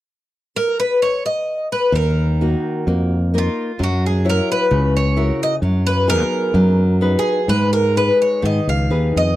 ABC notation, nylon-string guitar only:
X:1
M:2/4
L:1/8
Q:1/4=64
K:Ebm
V:1 name="Nylon-string guitar"
z4 | E, [B,EG] B, [B,EB] | G, [_FGd] D, [FGB] | ^F, [=B,^D^G] F, [DG=B] |
A, [EAc] E, [EAc] |]